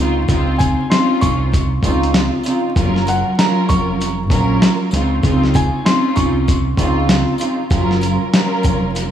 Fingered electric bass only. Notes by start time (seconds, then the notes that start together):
Already playing: C#2
0.29 C#2
1.22 C2
1.83 C#2
2.76 F#1
3.70 F1
4.30 A#1
4.93 C#2
5.23 C#2
6.17 C2
6.77 C#2
7.71 F#1
8.64 F1